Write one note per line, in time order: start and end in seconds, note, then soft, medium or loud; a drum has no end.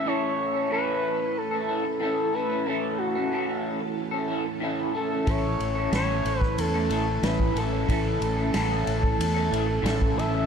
0.00 10.46 E3 medium
0.00 10.46 A3 medium
0.00 10.46 C#4 medium
0.00 10.46 A4 medium
0.05 0.69 A2 medium
0.05 0.71 E3 medium
0.05 0.57 A3 medium
0.05 0.56 C#4 medium
0.05 0.54 A4 medium
0.05 0.71 C#5 loud
0.54 0.72 A3 medium
0.54 0.72 C#4 medium
0.54 0.73 A4 medium
0.70 1.99 A2 medium
0.70 1.20 E3 medium
0.70 1.20 A3 medium
0.70 1.19 C#4 loud
0.70 1.19 A4 loud
0.70 1.39 B4 loud
1.20 muted clean electric guitar stroke soft
1.37 2.01 A4 loud
1.51 1.68 A3 medium
1.51 1.69 C#4 medium
1.51 1.70 A4 medium
1.67 1.85 E3 medium
1.67 1.85 A3 medium
1.67 1.85 C#4 medium
1.67 1.85 A4 medium
1.85 muted clean electric guitar stroke soft
2.00 2.66 A2 medium
2.00 2.32 E3 medium
2.00 2.34 A3 medium
2.00 2.35 C#4 medium
2.00 2.36 A4 medium
2.33 2.66 E3 medium
2.33 2.52 A3 medium
2.33 2.51 C#4 medium
2.33 2.49 A4 medium
2.33 2.68 B4 medium
2.50 2.68 A3 medium
2.50 2.68 C#4 medium
2.50 2.69 A4 medium
2.66 3.31 A2 medium
2.66 3.31 E3 medium
2.66 3.18 A3 medium
2.66 3.16 C#4 loud
2.66 3.00 A4 medium
2.66 3.15 A4 medium
2.98 3.64 F#4 medium
3.15 3.32 A3 medium
3.15 3.33 C#4 medium
3.15 3.34 A4 medium
3.31 4.60 A2 medium
3.31 3.81 E3 medium
3.31 3.81 A3 loud
3.31 3.80 C#4 medium
3.31 3.80 A4 medium
3.81 muted clean electric guitar stroke soft
4.11 4.29 A3 medium
4.11 4.30 C#4 medium
4.11 4.31 A4 medium
4.28 4.46 E3 medium
4.28 4.46 A3 medium
4.28 4.46 C#4 medium
4.28 4.45 A4 medium
4.46 muted clean electric guitar stroke soft
4.60 5.26 A2 medium
4.60 4.93 E3 medium
4.60 4.94 A3 medium
4.60 4.95 C#4 medium
4.60 4.96 A4 medium
4.93 5.27 E3 medium
4.93 5.13 A3 medium
4.93 5.12 C#4 medium
4.93 5.31 A4 medium
4.93 5.10 A4 medium
5.10 5.28 A3 medium
5.10 5.28 C#4 soft
5.10 5.29 A4 medium
5.26 5.57 A1 medium
5.26 5.91 A2 medium
5.26 5.92 E3 medium
5.26 5.78 A3 medium
5.26 5.77 C#4 medium
5.26 5.75 A4 medium
5.26 5.94 C#5 loud
5.26 kick loud
5.26 ride medium
5.60 5.90 A1 medium
5.60 ride soft
5.75 5.93 A3 medium
5.75 5.94 C#4 medium
5.75 5.95 A4 medium
5.92 6.22 A1 medium
5.92 7.23 A2 medium
5.92 6.42 E3 medium
5.92 6.42 A3 medium
5.92 6.42 C#4 medium
5.92 6.41 A4 loud
5.92 6.40 C#5 loud
5.92 snare loud
5.92 ride medium
6.25 6.55 A1 medium
6.25 ride medium
6.40 6.60 B4 loud
6.40 muted clean electric guitar stroke medium
6.40 kick medium
6.40 snare soft
6.58 6.88 E2 medium
6.58 7.25 A4 medium
6.58 ride medium
6.74 6.91 A3 soft
6.74 6.91 C#4 medium
6.74 6.92 A4 medium
6.89 7.21 A1 medium
6.89 7.07 E3 medium
6.89 7.07 A3 medium
6.89 7.06 C#4 medium
6.89 7.06 A4 medium
6.89 ride medium
7.06 muted clean electric guitar stroke soft
7.23 7.53 A1 medium
7.23 7.88 A2 medium
7.23 7.55 E3 medium
7.23 7.56 A3 medium
7.23 7.57 C#4 medium
7.23 7.58 A4 medium
7.23 7.60 B4 medium
7.23 snare loud
7.23 ride medium
7.40 kick medium
7.55 7.86 A1 medium
7.55 7.89 E3 medium
7.55 7.74 A3 medium
7.55 7.72 C#4 medium
7.55 7.71 A4 medium
7.55 10.19 A4 loud
7.55 ride medium
7.71 7.89 A3 medium
7.71 7.90 C#4 medium
7.71 7.91 A4 medium
7.88 8.19 A1 medium
7.88 8.53 A2 medium
7.88 8.54 E3 medium
7.88 8.40 A3 medium
7.88 8.38 C#4 loud
7.88 8.36 A4 medium
7.88 kick medium
7.88 ride medium
8.21 8.51 A1 medium
8.21 ride medium
8.37 8.55 A3 medium
8.37 8.55 C#4 medium
8.37 8.56 A4 medium
8.53 8.84 A1 medium
8.53 9.82 A2 medium
8.53 9.03 E3 medium
8.53 9.03 A3 medium
8.53 9.03 C#4 medium
8.53 9.03 A4 loud
8.53 snare medium
8.53 ride medium
8.87 9.17 A1 medium
8.87 ride medium
9.03 muted clean electric guitar stroke soft
9.03 kick medium
9.19 9.49 E2 medium
9.19 ride medium
9.34 9.52 A3 medium
9.34 9.52 C#4 medium
9.34 9.54 A4 medium
9.51 9.82 A1 medium
9.51 9.68 E3 medium
9.51 9.68 A3 medium
9.51 9.68 C#4 medium
9.51 9.68 A4 medium
9.51 ride medium
9.68 muted clean electric guitar stroke soft
9.82 10.14 A1 medium
9.82 10.46 A2 medium
9.82 10.16 E3 medium
9.82 10.17 A3 medium
9.82 10.18 C#4 medium
9.82 10.19 A4 medium
9.82 snare loud
9.82 ride medium
10.02 kick medium
10.16 10.46 A1 medium
10.16 10.46 E3 medium
10.16 10.36 A3 medium
10.16 10.34 C#4 medium
10.16 10.32 A4 medium
10.16 10.46 E5 loud
10.16 ride medium
10.32 10.46 A3 soft
10.32 10.46 C#4 medium
10.32 10.46 A4 medium